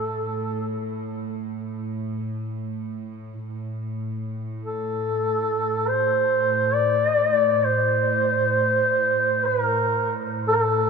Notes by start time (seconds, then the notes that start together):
Already playing: A2 A4
3.48 A2
4.64 A4
5.88 C5
6.74 D5
7.65 C5
9.45 B4
9.63 A#4
10.48 A4
10.54 A#4
10.62 A4